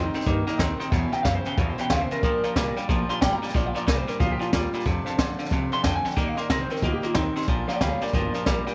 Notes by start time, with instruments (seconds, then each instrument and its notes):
Already playing: upright bass F2, clean electric guitar D#3 C4, steel-string acoustic guitar A#3 D#4 G4 A#4
0.04 clean electric guitar D#4
0.13 clean electric guitar D#3 C4, steel-string acoustic guitar A#3 D#4 G4 A#4, upright piano D#5 G5 C6, muted upright bass stroke, snare
0.21 snare
0.25 upright bass G2, steel-string acoustic guitar C3 D#3 A#3 D#4 G4 A#4, clean electric guitar D#3 A#3, upright piano D#5 G5 A#5, kick, snare
0.46 clean electric guitar D#3 A#3, steel-string acoustic guitar A#3 D#4 G4 A#4, upright piano D#5 G5 A#5, muted upright bass stroke, snare
0.58 upright bass D#2, clean electric guitar D#3 C4, steel-string acoustic guitar A#3 D#4 G4 A#4, upright piano D#5 G5 A#5, kick, snare, hi-hat pedal
0.78 clean electric guitar D#3 C4, steel-string acoustic guitar D#4 G4 A#4, upright piano D#5 G5 A#5, muted upright bass stroke, snare
0.82 steel-string acoustic guitar A#3
0.90 clean electric guitar E2 B2, upright bass E2, steel-string acoustic guitar E3 A#3 C#4 E4 G4, upright piano E5 G5 A#5, kick, snare
1.11 clean electric guitar E2 B2 G5, steel-string acoustic guitar C#4 E4 G4, upright piano E5 G5 A#5, muted upright bass stroke, snare
1.23 clean electric guitar E2 C#3 F5, upright bass F#2, steel-string acoustic guitar A#3 C#4, upright piano E5, kick, snare, hi-hat pedal
1.27 steel-string acoustic guitar E4 G4
1.35 clean electric guitar C5
1.44 clean electric guitar E2 C#3 G5, steel-string acoustic guitar E4 G4, upright piano E5 G5 A#5, muted upright bass stroke, snare
1.48 steel-string acoustic guitar C#4
1.57 clean electric guitar E2 B2 F5, upright bass E2, steel-string acoustic guitar E3 A#3 C#4 E4 G4, upright piano E5 G5 A#5, kick, snare
1.69 clean electric guitar C5
1.77 clean electric guitar E2 B2 G5, steel-string acoustic guitar E4 G4, upright piano E5 G5 A#5, muted upright bass stroke, snare
1.82 steel-string acoustic guitar C#4
1.90 upright bass D#2, clean electric guitar E2 C#3 F5, steel-string acoustic guitar A#3 C#4 E4 G4, upright piano E5 G5 C6, kick, snare, hi-hat pedal
2.01 clean electric guitar C5
2.11 clean electric guitar E2 C#3 A#4, steel-string acoustic guitar C#4 E4 G4, upright piano E5 G5 C6, muted upright bass stroke, snare
2.22 upright bass D2, clean electric guitar A#2 F3, steel-string acoustic guitar A#2 F3 G3 A#3 D4, upright piano D5 F5 A#5, kick, snare
2.26 steel-string acoustic guitar G4
2.43 clean electric guitar A#2 F3, steel-string acoustic guitar G3 A#3 D4 G4, upright piano D5 F5 A#5, muted upright bass stroke, snare
2.55 upright bass C2, clean electric guitar A#2 G3, steel-string acoustic guitar G3 A#3 D4 G4, upright piano D5 F5 A#5, kick, snare, hi-hat pedal
2.76 clean electric guitar A#2 G3, steel-string acoustic guitar G3 A#3 D4 G4, upright piano D5 F5 G5, snare
2.88 upright bass A#1, clean electric guitar A#2 F3, steel-string acoustic guitar A#2 F3 G3 A#3 D4 G4, upright piano D5 F5 A#5, kick, snare
3.08 clean electric guitar A#2 F3 C6, steel-string acoustic guitar G3 A#3 D4 G4, upright piano D5 F5 A#5, muted upright bass stroke, snare
3.21 upright bass G#1, clean electric guitar A#2 G3 G5, steel-string acoustic guitar G3 A#3 D4 G4, upright piano D5 F5 A#5, kick, snare, hi-hat pedal
3.33 clean electric guitar A#5
3.42 clean electric guitar A#2 G3 G5, steel-string acoustic guitar G3 A#3 D4 G4, upright piano D5 F5 A#5, muted upright bass stroke, snare
3.49 upright piano D5, snare
3.54 upright bass A#1, clean electric guitar A#2 F3 D5, steel-string acoustic guitar A#2 F3 G3 A#3 D4 G4, upright piano F5 C6, kick, snare
3.66 clean electric guitar F5
3.74 clean electric guitar A#2 F3 D5, steel-string acoustic guitar G3 A#3 D4 G4, upright piano D5 F5 A#5, snare
3.86 upright bass C2, clean electric guitar A#2 G3 A#4, steel-string acoustic guitar G3 A#3 D4 G4, upright piano D5 F5, kick, snare, hi-hat pedal
3.98 clean electric guitar C5
4.07 clean electric guitar A#2 G3 A#4, steel-string acoustic guitar G3 A#3 D4 G4, upright piano D5 F5 A#5, snare
4.20 upright bass D2, clean electric guitar A#2 F3 F4, steel-string acoustic guitar A#2 F3 G3 A#3 D4 G4, upright piano D5 F5 A#5, kick, snare
4.31 clean electric guitar G4
4.39 clean electric guitar A#2 F3 F4, steel-string acoustic guitar G3 A#3 D4 G4, upright piano D5 F5 A#5, muted upright bass stroke, snare
4.52 upright bass D#2, clean electric guitar A#2 G3 F4, steel-string acoustic guitar G3 A#3 D4 G4, upright piano D5 F5 A#5, kick, snare, hi-hat pedal
4.73 clean electric guitar A#2 G3, steel-string acoustic guitar G3 A#3 D4 G4, upright piano D5 F5 A#5, muted upright bass stroke, snare
4.80 snare
4.85 upright bass F2, clean electric guitar F2 C3, steel-string acoustic guitar F3 A3 C4 D4 A4, upright piano C5 F5 A5, kick, snare
5.04 clean electric guitar F2 C3, steel-string acoustic guitar C4 D4 A4, upright piano C5 F5 A5, muted upright bass stroke, snare
5.17 upright bass D2, clean electric guitar F2 D3, steel-string acoustic guitar A3 C4 D4 A4, upright piano C5 F5 C6, kick, snare, hi-hat pedal
5.37 clean electric guitar F2 D3, steel-string acoustic guitar C4 D4 A4, upright piano C5 F5 A5, snare
5.45 snare
5.50 upright bass C2, clean electric guitar F2 C3, steel-string acoustic guitar F3 A3 C4 D4 A4, upright piano C5 F5 A5, kick, snare
5.71 clean electric guitar F2 C3 C6, steel-string acoustic guitar C4 D4 A4, upright piano C5 F5 A5, snare
5.83 upright bass F2, clean electric guitar F2 D3 G5, steel-string acoustic guitar A3 C4 D4 A4, upright piano C5 F5 A5, kick, snare, hi-hat pedal
5.96 clean electric guitar G#5
6.03 clean electric guitar F2 D3 G5, steel-string acoustic guitar C4 D4 A4, upright piano C5 F5 A5, muted upright bass stroke, snare
6.11 snare
6.15 upright bass D#2, clean electric guitar D#3 A#3 D5, steel-string acoustic guitar D#3 G3 C4 G4 A#4, upright piano D#5 G5 A#5, kick, snare
6.28 clean electric guitar F5
6.35 clean electric guitar D#3 A#3, steel-string acoustic guitar G4 A#4, upright piano D#5 G5 C6, muted upright bass stroke, snare
6.39 steel-string acoustic guitar C4, clean electric guitar D5
6.49 upright bass C2, clean electric guitar D#3 C4 A#4, steel-string acoustic guitar G3 G4 A#4, upright piano G5 A#5, kick, snare, hi-hat pedal
6.61 clean electric guitar C5
6.69 clean electric guitar D#3 C4 A#4, steel-string acoustic guitar C4 G4 A#4, upright piano D#5 G5 C6, snare
6.76 snare
6.82 upright bass D2, steel-string acoustic guitar D#3 G3 C4 G4 A#4, clean electric guitar D#3 A#3 F4, upright piano D#5 G5 A#5, kick, snare
6.93 clean electric guitar G4
7.02 clean electric guitar D#3 A#3 F4, steel-string acoustic guitar C4 G4 A#4, upright piano D#5 G5 A#5, muted upright bass stroke, snare
7.14 upright bass D#2, clean electric guitar D#3 C4 D#4, steel-string acoustic guitar G3 C4 G4 A#4, upright piano D#5 G5 A#5, kick, snare, hi-hat pedal
7.35 clean electric guitar D#3 C4, steel-string acoustic guitar C4 G4 A#4, upright piano D#5 G5 C6, muted upright bass stroke, snare
7.41 snare
7.47 upright bass A#1, clean electric guitar A#2 F3, steel-string acoustic guitar A#2 D3 F3 A#3 D4 G4, upright piano D5 A#5, kick, snare
7.68 clean electric guitar A#2 F3 D5 G5, steel-string acoustic guitar F3 A#3 D4 G4, upright piano D5 F5 A#5, muted upright bass stroke, snare
7.81 upright bass D2, clean electric guitar A#2 G3 C#5 F5, steel-string acoustic guitar F3 A#3 D4 G4, upright piano F5 A#5, kick, snare, hi-hat pedal
8.01 clean electric guitar A#2 G3 A#4 D5, steel-string acoustic guitar F3 A#3 D4 G4, upright piano D5 F5 G5, muted upright bass stroke, snare
8.07 snare
8.13 upright bass G1, steel-string acoustic guitar A#2 D3 F3 A#3 D4 G4, clean electric guitar A#2 F3 A#4, upright piano D5 F5 G5, kick, snare
8.33 clean electric guitar A#2 F3, steel-string acoustic guitar F3 A#3 D4 G4, upright piano D5 F5 A#5, muted upright bass stroke, snare
8.45 upright bass A#1, clean electric guitar A#2 G3, steel-string acoustic guitar A#3 G4, upright piano D5 F5 A#5, kick, snare, hi-hat pedal
8.65 clean electric guitar A#2 G3, steel-string acoustic guitar A#3 D4 G4, upright piano D5 F5 G5, snare
8.69 steel-string acoustic guitar F3